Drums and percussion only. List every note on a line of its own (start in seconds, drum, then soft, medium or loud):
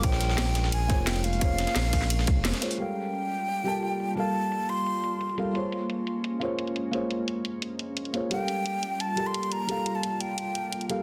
0.03 kick loud
0.03 closed hi-hat medium
0.03 ride bell medium
0.12 snare medium
0.21 snare soft
0.21 closed hi-hat medium
0.29 snare medium
0.38 snare loud
0.38 closed hi-hat medium
0.38 ride bell medium
0.55 snare soft
0.55 closed hi-hat medium
0.64 snare medium
0.72 closed hi-hat medium
0.72 ride bell medium
0.90 kick loud
0.90 snare soft
0.90 closed hi-hat medium
1.07 snare loud
1.07 closed hi-hat medium
1.07 ride bell medium
1.16 snare soft
1.16 closed hi-hat soft
1.24 closed hi-hat medium
1.33 closed hi-hat soft
1.41 kick loud
1.41 closed hi-hat medium
1.41 ride bell medium
1.58 snare medium
1.58 closed hi-hat medium
1.67 snare soft
1.67 closed hi-hat soft
1.76 snare loud
1.76 closed hi-hat medium
1.76 ride bell medium
1.93 kick medium
1.93 snare soft
1.93 closed hi-hat medium
1.93 open hi-hat medium
2.02 snare soft
2.10 closed hi-hat loud
2.10 closed hi-hat medium
2.10 ride bell medium
2.19 snare soft
2.27 kick loud
2.27 closed hi-hat medium
2.45 snare loud
2.45 closed hi-hat medium
2.45 closed hi-hat loud
2.45 ride bell medium
2.53 snare medium
2.53 closed hi-hat soft
2.62 snare soft
2.62 closed hi-hat medium
2.71 closed hi-hat medium
2.79 closed hi-hat medium
2.96 closed hi-hat medium
3.14 closed hi-hat medium
3.31 closed hi-hat medium
3.48 closed hi-hat medium
3.65 closed hi-hat medium
3.83 closed hi-hat medium
3.92 closed hi-hat soft
4.00 closed hi-hat medium
4.17 closed hi-hat medium
4.35 closed hi-hat medium
4.52 closed hi-hat medium
4.69 closed hi-hat medium
4.86 closed hi-hat medium
5.04 closed hi-hat medium
5.21 closed hi-hat medium
5.29 closed hi-hat soft
5.38 closed hi-hat medium
5.55 closed hi-hat medium
5.72 closed hi-hat medium
5.90 closed hi-hat medium
6.07 closed hi-hat medium
6.24 closed hi-hat medium
6.41 closed hi-hat medium
6.59 closed hi-hat medium
6.67 closed hi-hat soft
6.76 closed hi-hat medium
6.93 closed hi-hat medium
7.11 closed hi-hat medium
7.28 closed hi-hat medium
7.45 closed hi-hat medium
7.62 closed hi-hat medium
7.79 closed hi-hat medium
7.97 closed hi-hat medium
8.05 closed hi-hat soft
8.14 closed hi-hat medium
8.31 closed hi-hat medium
8.48 closed hi-hat medium
8.66 closed hi-hat medium
8.83 closed hi-hat medium
9.00 closed hi-hat medium
9.17 closed hi-hat medium
9.34 closed hi-hat medium
9.43 closed hi-hat soft
9.52 closed hi-hat medium
9.69 closed hi-hat medium
9.86 closed hi-hat medium
10.03 closed hi-hat medium
10.21 closed hi-hat medium
10.38 closed hi-hat medium
10.55 closed hi-hat medium
10.72 closed hi-hat medium
10.81 closed hi-hat soft
10.90 closed hi-hat medium